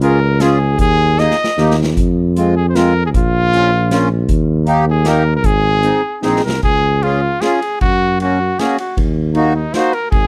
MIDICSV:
0, 0, Header, 1, 5, 480
1, 0, Start_track
1, 0, Key_signature, -4, "major"
1, 0, Tempo, 388853
1, 979, Time_signature, 3, 2, 24, 8
1, 8195, Key_signature, -5, "major"
1, 12677, End_track
2, 0, Start_track
2, 0, Title_t, "Trumpet"
2, 0, Program_c, 0, 56
2, 36, Note_on_c, 0, 70, 85
2, 510, Note_on_c, 0, 68, 80
2, 529, Note_off_c, 0, 70, 0
2, 983, Note_off_c, 0, 68, 0
2, 994, Note_on_c, 0, 68, 100
2, 1476, Note_on_c, 0, 75, 91
2, 1494, Note_off_c, 0, 68, 0
2, 2204, Note_off_c, 0, 75, 0
2, 3162, Note_on_c, 0, 68, 73
2, 3303, Note_off_c, 0, 68, 0
2, 3325, Note_on_c, 0, 72, 62
2, 3405, Note_on_c, 0, 70, 85
2, 3423, Note_off_c, 0, 72, 0
2, 3763, Note_off_c, 0, 70, 0
2, 3777, Note_on_c, 0, 68, 71
2, 3826, Note_off_c, 0, 68, 0
2, 3912, Note_on_c, 0, 65, 101
2, 5041, Note_off_c, 0, 65, 0
2, 6054, Note_on_c, 0, 68, 84
2, 6282, Note_on_c, 0, 70, 89
2, 6301, Note_off_c, 0, 68, 0
2, 6606, Note_off_c, 0, 70, 0
2, 6613, Note_on_c, 0, 70, 79
2, 6737, Note_on_c, 0, 68, 97
2, 6755, Note_off_c, 0, 70, 0
2, 7704, Note_off_c, 0, 68, 0
2, 7940, Note_on_c, 0, 70, 70
2, 8170, Note_off_c, 0, 70, 0
2, 8190, Note_on_c, 0, 68, 98
2, 8676, Note_on_c, 0, 65, 80
2, 8694, Note_off_c, 0, 68, 0
2, 9149, Note_on_c, 0, 68, 83
2, 9167, Note_off_c, 0, 65, 0
2, 9634, Note_off_c, 0, 68, 0
2, 9642, Note_on_c, 0, 66, 91
2, 10094, Note_off_c, 0, 66, 0
2, 10135, Note_on_c, 0, 66, 79
2, 10607, Note_on_c, 0, 68, 84
2, 10626, Note_off_c, 0, 66, 0
2, 10847, Note_off_c, 0, 68, 0
2, 10856, Note_on_c, 0, 66, 62
2, 11065, Note_off_c, 0, 66, 0
2, 11782, Note_on_c, 0, 63, 74
2, 12024, Note_on_c, 0, 72, 95
2, 12043, Note_off_c, 0, 63, 0
2, 12263, Note_on_c, 0, 70, 79
2, 12282, Note_off_c, 0, 72, 0
2, 12478, Note_off_c, 0, 70, 0
2, 12486, Note_on_c, 0, 68, 99
2, 12677, Note_off_c, 0, 68, 0
2, 12677, End_track
3, 0, Start_track
3, 0, Title_t, "Accordion"
3, 0, Program_c, 1, 21
3, 20, Note_on_c, 1, 61, 57
3, 29, Note_on_c, 1, 65, 55
3, 34, Note_on_c, 1, 68, 62
3, 240, Note_off_c, 1, 61, 0
3, 245, Note_off_c, 1, 65, 0
3, 247, Note_off_c, 1, 68, 0
3, 498, Note_on_c, 1, 61, 78
3, 501, Note_on_c, 1, 65, 62
3, 511, Note_on_c, 1, 68, 79
3, 719, Note_off_c, 1, 61, 0
3, 721, Note_off_c, 1, 65, 0
3, 726, Note_off_c, 1, 68, 0
3, 1464, Note_on_c, 1, 58, 60
3, 1465, Note_on_c, 1, 63, 51
3, 1471, Note_on_c, 1, 68, 65
3, 1684, Note_off_c, 1, 58, 0
3, 1685, Note_off_c, 1, 63, 0
3, 1688, Note_off_c, 1, 68, 0
3, 1945, Note_on_c, 1, 58, 62
3, 1949, Note_on_c, 1, 63, 60
3, 1959, Note_on_c, 1, 67, 75
3, 2170, Note_off_c, 1, 58, 0
3, 2172, Note_off_c, 1, 63, 0
3, 2177, Note_off_c, 1, 67, 0
3, 2920, Note_on_c, 1, 56, 69
3, 2928, Note_on_c, 1, 65, 67
3, 2932, Note_on_c, 1, 60, 60
3, 3141, Note_off_c, 1, 56, 0
3, 3145, Note_off_c, 1, 65, 0
3, 3147, Note_off_c, 1, 60, 0
3, 3405, Note_on_c, 1, 56, 71
3, 3406, Note_on_c, 1, 60, 66
3, 3412, Note_on_c, 1, 65, 76
3, 3622, Note_off_c, 1, 56, 0
3, 3623, Note_off_c, 1, 60, 0
3, 3625, Note_off_c, 1, 65, 0
3, 4350, Note_on_c, 1, 58, 63
3, 4359, Note_on_c, 1, 61, 54
3, 4364, Note_on_c, 1, 65, 64
3, 4570, Note_off_c, 1, 58, 0
3, 4574, Note_off_c, 1, 61, 0
3, 4577, Note_off_c, 1, 65, 0
3, 4810, Note_on_c, 1, 58, 73
3, 4824, Note_on_c, 1, 61, 84
3, 4826, Note_on_c, 1, 65, 91
3, 5039, Note_off_c, 1, 58, 0
3, 5046, Note_off_c, 1, 61, 0
3, 5047, Note_off_c, 1, 65, 0
3, 5755, Note_on_c, 1, 58, 77
3, 5764, Note_on_c, 1, 63, 65
3, 5770, Note_on_c, 1, 67, 90
3, 5985, Note_off_c, 1, 58, 0
3, 5989, Note_off_c, 1, 63, 0
3, 5992, Note_off_c, 1, 67, 0
3, 6231, Note_on_c, 1, 58, 68
3, 6239, Note_on_c, 1, 63, 65
3, 6239, Note_on_c, 1, 67, 80
3, 6460, Note_off_c, 1, 58, 0
3, 6464, Note_off_c, 1, 63, 0
3, 6464, Note_off_c, 1, 67, 0
3, 7184, Note_on_c, 1, 60, 64
3, 7195, Note_on_c, 1, 63, 50
3, 7197, Note_on_c, 1, 68, 53
3, 7420, Note_off_c, 1, 60, 0
3, 7426, Note_off_c, 1, 63, 0
3, 7426, Note_off_c, 1, 68, 0
3, 7680, Note_on_c, 1, 60, 77
3, 7685, Note_on_c, 1, 63, 74
3, 7692, Note_on_c, 1, 68, 87
3, 7919, Note_off_c, 1, 60, 0
3, 7922, Note_off_c, 1, 63, 0
3, 7925, Note_off_c, 1, 68, 0
3, 8676, Note_on_c, 1, 61, 52
3, 8676, Note_on_c, 1, 65, 45
3, 8682, Note_on_c, 1, 68, 62
3, 8900, Note_off_c, 1, 61, 0
3, 8900, Note_off_c, 1, 65, 0
3, 8903, Note_off_c, 1, 68, 0
3, 9153, Note_on_c, 1, 61, 67
3, 9154, Note_on_c, 1, 65, 60
3, 9164, Note_on_c, 1, 68, 72
3, 9381, Note_off_c, 1, 61, 0
3, 9382, Note_off_c, 1, 65, 0
3, 9387, Note_off_c, 1, 68, 0
3, 10128, Note_on_c, 1, 58, 60
3, 10137, Note_on_c, 1, 61, 50
3, 10148, Note_on_c, 1, 66, 60
3, 10350, Note_off_c, 1, 58, 0
3, 10354, Note_off_c, 1, 61, 0
3, 10359, Note_off_c, 1, 66, 0
3, 10605, Note_on_c, 1, 58, 75
3, 10606, Note_on_c, 1, 61, 62
3, 10621, Note_on_c, 1, 66, 75
3, 10822, Note_off_c, 1, 58, 0
3, 10823, Note_off_c, 1, 61, 0
3, 10830, Note_off_c, 1, 66, 0
3, 11543, Note_on_c, 1, 58, 79
3, 11546, Note_on_c, 1, 63, 68
3, 11556, Note_on_c, 1, 66, 89
3, 11766, Note_off_c, 1, 58, 0
3, 11767, Note_off_c, 1, 63, 0
3, 11772, Note_off_c, 1, 66, 0
3, 12032, Note_on_c, 1, 58, 73
3, 12035, Note_on_c, 1, 63, 58
3, 12045, Note_on_c, 1, 66, 66
3, 12250, Note_off_c, 1, 58, 0
3, 12251, Note_off_c, 1, 63, 0
3, 12256, Note_off_c, 1, 66, 0
3, 12677, End_track
4, 0, Start_track
4, 0, Title_t, "Tuba"
4, 0, Program_c, 2, 58
4, 0, Note_on_c, 2, 37, 103
4, 972, Note_on_c, 2, 39, 94
4, 991, Note_off_c, 2, 37, 0
4, 1603, Note_off_c, 2, 39, 0
4, 1944, Note_on_c, 2, 39, 99
4, 2429, Note_on_c, 2, 41, 87
4, 2447, Note_off_c, 2, 39, 0
4, 3883, Note_on_c, 2, 34, 85
4, 3901, Note_off_c, 2, 41, 0
4, 5296, Note_on_c, 2, 39, 100
4, 5314, Note_off_c, 2, 34, 0
4, 6714, Note_on_c, 2, 32, 92
4, 6733, Note_off_c, 2, 39, 0
4, 7351, Note_off_c, 2, 32, 0
4, 7699, Note_on_c, 2, 34, 73
4, 7928, Note_off_c, 2, 34, 0
4, 7950, Note_on_c, 2, 36, 68
4, 8168, Note_off_c, 2, 36, 0
4, 8187, Note_on_c, 2, 37, 84
4, 9134, Note_off_c, 2, 37, 0
4, 9647, Note_on_c, 2, 42, 70
4, 10576, Note_off_c, 2, 42, 0
4, 11075, Note_on_c, 2, 39, 84
4, 12004, Note_off_c, 2, 39, 0
4, 12493, Note_on_c, 2, 32, 69
4, 12677, Note_off_c, 2, 32, 0
4, 12677, End_track
5, 0, Start_track
5, 0, Title_t, "Drums"
5, 17, Note_on_c, 9, 42, 40
5, 141, Note_off_c, 9, 42, 0
5, 493, Note_on_c, 9, 38, 54
5, 493, Note_on_c, 9, 42, 48
5, 616, Note_off_c, 9, 38, 0
5, 616, Note_off_c, 9, 42, 0
5, 969, Note_on_c, 9, 42, 37
5, 972, Note_on_c, 9, 36, 62
5, 1093, Note_off_c, 9, 42, 0
5, 1096, Note_off_c, 9, 36, 0
5, 1457, Note_on_c, 9, 38, 43
5, 1581, Note_off_c, 9, 38, 0
5, 1617, Note_on_c, 9, 38, 46
5, 1740, Note_off_c, 9, 38, 0
5, 1779, Note_on_c, 9, 38, 57
5, 1903, Note_off_c, 9, 38, 0
5, 1942, Note_on_c, 9, 38, 42
5, 2066, Note_off_c, 9, 38, 0
5, 2109, Note_on_c, 9, 38, 47
5, 2233, Note_off_c, 9, 38, 0
5, 2269, Note_on_c, 9, 38, 61
5, 2393, Note_off_c, 9, 38, 0
5, 2431, Note_on_c, 9, 42, 40
5, 2432, Note_on_c, 9, 36, 62
5, 2554, Note_off_c, 9, 42, 0
5, 2555, Note_off_c, 9, 36, 0
5, 2917, Note_on_c, 9, 42, 46
5, 3041, Note_off_c, 9, 42, 0
5, 3399, Note_on_c, 9, 38, 59
5, 3399, Note_on_c, 9, 42, 41
5, 3523, Note_off_c, 9, 38, 0
5, 3523, Note_off_c, 9, 42, 0
5, 3880, Note_on_c, 9, 36, 75
5, 3881, Note_on_c, 9, 42, 43
5, 4003, Note_off_c, 9, 36, 0
5, 4005, Note_off_c, 9, 42, 0
5, 4360, Note_on_c, 9, 42, 40
5, 4483, Note_off_c, 9, 42, 0
5, 4828, Note_on_c, 9, 38, 55
5, 4828, Note_on_c, 9, 42, 44
5, 4952, Note_off_c, 9, 38, 0
5, 4952, Note_off_c, 9, 42, 0
5, 5290, Note_on_c, 9, 42, 40
5, 5296, Note_on_c, 9, 36, 63
5, 5414, Note_off_c, 9, 42, 0
5, 5420, Note_off_c, 9, 36, 0
5, 5759, Note_on_c, 9, 42, 36
5, 5883, Note_off_c, 9, 42, 0
5, 6231, Note_on_c, 9, 38, 54
5, 6231, Note_on_c, 9, 42, 44
5, 6354, Note_off_c, 9, 38, 0
5, 6354, Note_off_c, 9, 42, 0
5, 6713, Note_on_c, 9, 42, 42
5, 6716, Note_on_c, 9, 36, 68
5, 6837, Note_off_c, 9, 42, 0
5, 6839, Note_off_c, 9, 36, 0
5, 7197, Note_on_c, 9, 42, 40
5, 7320, Note_off_c, 9, 42, 0
5, 7685, Note_on_c, 9, 38, 41
5, 7808, Note_off_c, 9, 38, 0
5, 7855, Note_on_c, 9, 38, 41
5, 7978, Note_off_c, 9, 38, 0
5, 8011, Note_on_c, 9, 38, 67
5, 8134, Note_off_c, 9, 38, 0
5, 8179, Note_on_c, 9, 51, 33
5, 8185, Note_on_c, 9, 36, 56
5, 8303, Note_off_c, 9, 51, 0
5, 8308, Note_off_c, 9, 36, 0
5, 8674, Note_on_c, 9, 51, 36
5, 8797, Note_off_c, 9, 51, 0
5, 9153, Note_on_c, 9, 38, 50
5, 9153, Note_on_c, 9, 51, 36
5, 9276, Note_off_c, 9, 38, 0
5, 9276, Note_off_c, 9, 51, 0
5, 9410, Note_on_c, 9, 51, 41
5, 9533, Note_off_c, 9, 51, 0
5, 9640, Note_on_c, 9, 51, 39
5, 9645, Note_on_c, 9, 36, 65
5, 9764, Note_off_c, 9, 51, 0
5, 9769, Note_off_c, 9, 36, 0
5, 10121, Note_on_c, 9, 51, 44
5, 10245, Note_off_c, 9, 51, 0
5, 10607, Note_on_c, 9, 38, 55
5, 10607, Note_on_c, 9, 51, 46
5, 10730, Note_off_c, 9, 38, 0
5, 10730, Note_off_c, 9, 51, 0
5, 10842, Note_on_c, 9, 51, 48
5, 10966, Note_off_c, 9, 51, 0
5, 11075, Note_on_c, 9, 36, 58
5, 11080, Note_on_c, 9, 51, 40
5, 11198, Note_off_c, 9, 36, 0
5, 11203, Note_off_c, 9, 51, 0
5, 11537, Note_on_c, 9, 51, 38
5, 11661, Note_off_c, 9, 51, 0
5, 12020, Note_on_c, 9, 38, 57
5, 12020, Note_on_c, 9, 51, 38
5, 12144, Note_off_c, 9, 38, 0
5, 12144, Note_off_c, 9, 51, 0
5, 12258, Note_on_c, 9, 51, 37
5, 12382, Note_off_c, 9, 51, 0
5, 12494, Note_on_c, 9, 36, 76
5, 12495, Note_on_c, 9, 51, 37
5, 12618, Note_off_c, 9, 36, 0
5, 12619, Note_off_c, 9, 51, 0
5, 12677, End_track
0, 0, End_of_file